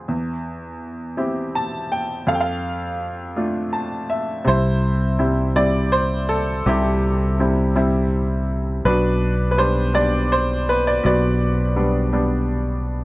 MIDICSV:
0, 0, Header, 1, 3, 480
1, 0, Start_track
1, 0, Key_signature, 0, "major"
1, 0, Tempo, 729927
1, 48, Time_signature, 6, 3, 24, 8
1, 8575, End_track
2, 0, Start_track
2, 0, Title_t, "Grand piano"
2, 0, Program_c, 0, 0
2, 0, Control_c, 0, 64, 127
2, 54, Note_on_c, 0, 40, 51
2, 57, Control_c, 0, 64, 0
2, 191, Control_c, 0, 64, 127
2, 771, Note_on_c, 0, 60, 41
2, 771, Note_on_c, 0, 64, 36
2, 774, Note_on_c, 0, 67, 41
2, 1022, Note_on_c, 0, 81, 78
2, 1261, Note_on_c, 0, 79, 68
2, 1264, Note_off_c, 0, 81, 0
2, 1470, Note_off_c, 0, 40, 0
2, 1471, Note_off_c, 0, 60, 0
2, 1472, Note_off_c, 0, 64, 0
2, 1473, Note_off_c, 0, 67, 0
2, 1481, Note_off_c, 0, 79, 0
2, 1492, Note_on_c, 0, 41, 55
2, 1500, Control_c, 0, 64, 0
2, 1502, Note_on_c, 0, 77, 63
2, 1506, Note_on_c, 0, 69, 46
2, 1541, Note_off_c, 0, 77, 0
2, 1544, Note_on_c, 0, 79, 54
2, 1580, Note_off_c, 0, 69, 0
2, 1581, Note_on_c, 0, 77, 63
2, 1588, Note_off_c, 0, 79, 0
2, 1589, Note_on_c, 0, 69, 44
2, 1609, Control_c, 0, 64, 127
2, 2212, Note_on_c, 0, 57, 40
2, 2212, Note_on_c, 0, 62, 35
2, 2216, Note_on_c, 0, 65, 45
2, 2430, Note_off_c, 0, 77, 0
2, 2434, Note_off_c, 0, 69, 0
2, 2451, Note_on_c, 0, 81, 57
2, 2678, Note_off_c, 0, 81, 0
2, 2694, Note_on_c, 0, 76, 56
2, 2913, Note_off_c, 0, 41, 0
2, 2915, Note_off_c, 0, 57, 0
2, 2916, Note_off_c, 0, 62, 0
2, 2917, Note_off_c, 0, 65, 0
2, 2920, Note_off_c, 0, 76, 0
2, 2922, Note_on_c, 0, 48, 59
2, 2943, Note_on_c, 0, 72, 84
2, 2947, Control_c, 0, 64, 0
2, 2948, Note_on_c, 0, 64, 59
2, 3079, Control_c, 0, 64, 127
2, 3403, Note_off_c, 0, 64, 0
2, 3411, Note_on_c, 0, 55, 48
2, 3411, Note_on_c, 0, 60, 42
2, 3413, Note_on_c, 0, 64, 51
2, 3645, Note_off_c, 0, 55, 0
2, 3645, Note_off_c, 0, 60, 0
2, 3651, Note_off_c, 0, 64, 0
2, 3654, Note_on_c, 0, 55, 45
2, 3655, Note_on_c, 0, 60, 44
2, 3656, Note_on_c, 0, 74, 94
2, 3661, Note_on_c, 0, 64, 50
2, 3684, Note_off_c, 0, 72, 0
2, 3893, Note_on_c, 0, 72, 90
2, 3906, Note_off_c, 0, 74, 0
2, 4123, Note_off_c, 0, 55, 0
2, 4124, Note_off_c, 0, 60, 0
2, 4127, Note_off_c, 0, 64, 0
2, 4135, Note_on_c, 0, 69, 76
2, 4145, Note_off_c, 0, 72, 0
2, 4346, Note_off_c, 0, 48, 0
2, 4379, Note_on_c, 0, 48, 66
2, 4385, Note_off_c, 0, 69, 0
2, 4387, Note_on_c, 0, 67, 68
2, 4397, Note_on_c, 0, 64, 51
2, 4858, Note_off_c, 0, 64, 0
2, 4861, Note_on_c, 0, 55, 48
2, 4864, Note_on_c, 0, 60, 41
2, 4868, Note_on_c, 0, 64, 51
2, 4897, Note_off_c, 0, 67, 0
2, 5089, Note_off_c, 0, 55, 0
2, 5091, Note_off_c, 0, 60, 0
2, 5095, Note_off_c, 0, 64, 0
2, 5099, Note_on_c, 0, 55, 51
2, 5101, Note_on_c, 0, 60, 45
2, 5105, Note_on_c, 0, 64, 51
2, 5565, Note_off_c, 0, 55, 0
2, 5565, Note_off_c, 0, 60, 0
2, 5568, Note_off_c, 0, 64, 0
2, 5792, Note_off_c, 0, 48, 0
2, 5821, Note_on_c, 0, 47, 62
2, 5821, Note_on_c, 0, 71, 85
2, 5828, Control_c, 0, 64, 0
2, 5829, Note_on_c, 0, 62, 63
2, 5958, Control_c, 0, 64, 127
2, 6246, Note_off_c, 0, 71, 0
2, 6255, Note_on_c, 0, 71, 66
2, 6292, Note_off_c, 0, 62, 0
2, 6297, Note_on_c, 0, 55, 47
2, 6300, Note_off_c, 0, 71, 0
2, 6301, Note_on_c, 0, 62, 54
2, 6302, Note_on_c, 0, 72, 84
2, 6524, Note_off_c, 0, 55, 0
2, 6534, Note_on_c, 0, 55, 51
2, 6535, Note_off_c, 0, 62, 0
2, 6541, Note_on_c, 0, 74, 100
2, 6544, Note_on_c, 0, 62, 57
2, 6546, Note_off_c, 0, 72, 0
2, 6785, Note_off_c, 0, 74, 0
2, 6787, Note_on_c, 0, 72, 87
2, 6999, Note_off_c, 0, 55, 0
2, 7004, Note_off_c, 0, 72, 0
2, 7005, Note_off_c, 0, 62, 0
2, 7030, Note_on_c, 0, 71, 84
2, 7146, Note_off_c, 0, 71, 0
2, 7150, Note_on_c, 0, 74, 90
2, 7230, Note_off_c, 0, 47, 0
2, 7257, Note_on_c, 0, 47, 63
2, 7262, Note_off_c, 0, 74, 0
2, 7272, Note_on_c, 0, 74, 83
2, 7280, Note_on_c, 0, 71, 62
2, 7735, Note_on_c, 0, 55, 47
2, 7736, Note_on_c, 0, 59, 42
2, 7736, Note_on_c, 0, 62, 50
2, 7965, Note_off_c, 0, 55, 0
2, 7966, Note_off_c, 0, 59, 0
2, 7969, Note_off_c, 0, 62, 0
2, 7975, Note_on_c, 0, 55, 45
2, 7976, Note_on_c, 0, 59, 41
2, 7979, Note_on_c, 0, 62, 53
2, 8436, Note_off_c, 0, 74, 0
2, 8439, Note_off_c, 0, 55, 0
2, 8440, Note_off_c, 0, 59, 0
2, 8440, Note_off_c, 0, 71, 0
2, 8441, Note_off_c, 0, 62, 0
2, 8575, Note_off_c, 0, 47, 0
2, 8575, End_track
3, 0, Start_track
3, 0, Title_t, "Fingered electric bass"
3, 0, Program_c, 1, 33
3, 2941, Note_on_c, 1, 36, 70
3, 4355, Note_off_c, 1, 36, 0
3, 4380, Note_on_c, 1, 36, 79
3, 5792, Note_off_c, 1, 36, 0
3, 5820, Note_on_c, 1, 35, 78
3, 7229, Note_off_c, 1, 35, 0
3, 7265, Note_on_c, 1, 35, 82
3, 8575, Note_off_c, 1, 35, 0
3, 8575, End_track
0, 0, End_of_file